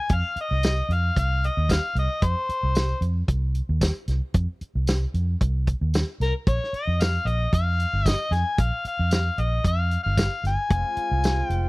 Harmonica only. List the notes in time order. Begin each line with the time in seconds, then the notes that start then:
Already playing: G#5
0.14 F5
0.41 D#5
0.93 F5
1.19 F5
1.46 D#5
1.72 F5
1.99 D#5
2.25 C5
6.23 A#4
6.49 C#5
6.75 D#5
7.01 F5
7.27 D#5
7.54 F5
8.08 D#5
8.33 G#5
8.60 F5
8.87 F5
9.14 F5
9.40 D#5
9.68 F5
10.03 F5
10.47 G#5
11.46 G5